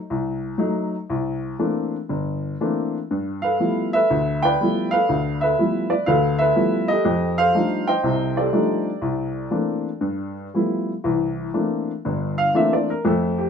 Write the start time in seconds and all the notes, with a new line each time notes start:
0.10 C2
0.58 F#3 A3 D#4
1.10 C2
1.59 E3 A3 A#3 C4 D4
2.09 G1
2.61 E3 A3 A#3 C4 D4
3.11 G2
3.42 A4 B4 F5
3.60 F3 G3 A3 B3 E4
3.93 A4 B4 E5
4.10 D2
4.43 B4 D5 G5
4.60 F3 G3 A3 B3 E4
4.91 A4 B4 F5
5.09 D2
5.41 A4 B4 E5
5.59 F3 G3 A3 B3 E4
5.90 D5
6.06 D2 D3 A4 B4 F5
6.39 A4 B4 E5
6.56 F3 G3 A3 B3 E4
6.88 G4 A4 D#5
7.05 F2
7.38 A4 C5 F5
7.55 F3 G3 A3 D4 D#4
7.88 C5 D#5 G5
8.03 C2 C3
8.37 G4 A4 D5
8.52 F3 G3 A3 D4 D#4
9.02 C2
9.51 E3 A3 A#3 C4 D4
10.01 G2
10.54 F3 G3 A3 B3 E4
11.04 C2 E3
11.54 E3 A3 A#3 C4 D4
12.05 G1 G2
12.38 F5
12.54 E3 A3 A#3 C4 D4 E5
12.73 D5
12.90 A#4
13.05 F2 A3 A4
13.38 G4